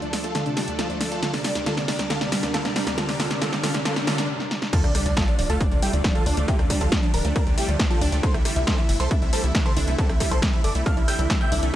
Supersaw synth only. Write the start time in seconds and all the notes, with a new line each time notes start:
0.02 D4
0.13 D4
0.24 F4 A4
0.35 F4 A4
0.46 D4
0.57 D4
0.68 D4
0.79 F4 A4
0.90 D4
1.01 D4
1.12 F4 A4
1.23 F4 A4
1.34 D4
1.45 D4
1.56 D4
1.66 F4 A4
1.77 D4
1.88 D4
1.99 D4
2.10 F4 A4
2.21 D4
2.32 D4
2.43 D4
2.54 F4 A4
2.65 D4
2.76 D4
2.87 D4
2.98 F4 A4
3.09 D4
3.20 F4 A4
3.31 D4
3.42 F4 A4
3.53 D4
3.64 F4 A4
3.74 D4
3.85 F4 A4
3.96 D4
4.07 F4 A4
4.18 D4
4.73 F4 A4
4.84 D4
4.95 D4
5.06 D4
5.17 F4 A4
5.28 D4
5.39 D4
5.50 F4 A4
5.61 D4
5.72 D4
5.83 E4 G4
5.94 D4
6.04 D4
6.15 F4 A4
6.26 D4
6.37 D4
6.48 E4 G4
6.59 D4
6.70 D4
6.81 F4 A4
6.92 D4
7.03 D4
7.14 D4 A#4
7.25 D4
7.36 D4 A#4
7.47 D4
7.58 E4 G4
7.69 D4
7.80 D4
7.91 F4 A4
8.01 D4
8.12 D4
8.23 A4 C5
8.34 E4
8.45 E4
8.56 E4
8.67 A4 C5
8.78 E4
8.89 E4
9.00 A4 C5
9.11 E4
9.22 E4
9.33 C4 A4
9.44 E4
9.55 E4
9.66 A4 C5
9.77 E4
9.88 E4
9.99 C4 A4
10.10 E4
10.20 E4
10.31 A4 C5
10.42 E4
10.53 E4
10.64 A4 D5
10.75 E4
10.86 A4 F5
10.97 E4
11.08 E5 G5
11.19 E4
11.30 E4
11.41 E5 G5
11.52 E4
11.63 E4